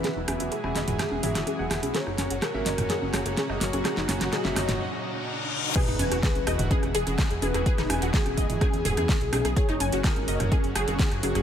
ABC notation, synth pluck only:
X:1
M:4/4
L:1/16
Q:1/4=126
K:Elyd
V:1 name="Synth pluck"
G D g F G z d z G z G G G z G G | G D g F G z d z G z G G G z G G | G D g F G z d z8 z | G D g F G z d z G z G G G z G G |
G D g F G z d z G z G G G z G G | G D g F G z d z G z G G G z G G |]